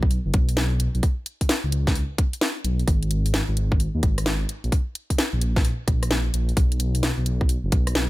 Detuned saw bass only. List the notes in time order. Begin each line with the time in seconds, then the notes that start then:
Already playing: B1
0.26 F#1
0.34 B1
0.95 B1
1.64 C#2
2.65 B1
2.88 G#1
3.49 G#1
3.95 D#2
4.03 G#1
4.64 A#1
5.33 A#1
5.88 A#1
6.34 A#1
6.57 B1
7.18 B1
7.64 F#1
7.72 B1